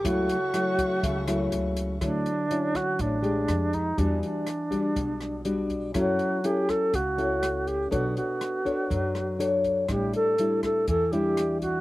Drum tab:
HH |xxxxxxxx|xxxxxxxx|xxxxxxxx|xxxxxxxx|
SD |--r--r--|r--r--r-|--r--r--|r--r--r-|
BD |o--oo---|o--oo--o|o--oo--o|o--oo--o|

HH |xxxxxxxx|xxxxxxxx|
SD |--r--r--|r--r--r-|
BD |o--oo--o|o--oo--o|